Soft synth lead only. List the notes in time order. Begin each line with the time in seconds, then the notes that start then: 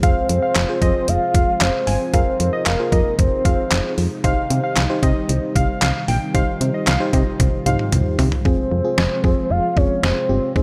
0.03 C5
1.09 F5
1.61 C5
2.14 C5
2.67 A#4
3.19 C5
8.45 C5
9.51 F5
9.77 C#5
10.03 C5
10.56 C5